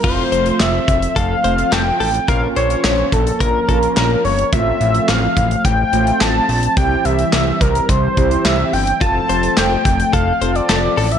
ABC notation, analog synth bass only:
X:1
M:4/4
L:1/8
Q:1/4=107
K:F
V:1 name="Analog synth bass" clef=bass
F,,, F,,, F,,, F,,, F,,, F,,, F,,, A,,, | B,,, B,,, B,,, B,,, B,,, B,,, B,,, G,,, | A,,, A,,, A,,, A,,, A,,, A,,, A,,, B,,, | C,, C,, C,, C,, C,, C,, C,, G,,, |
F,,, F,,, F,,, F,,, F,,, F,,, F,,, A,,, |]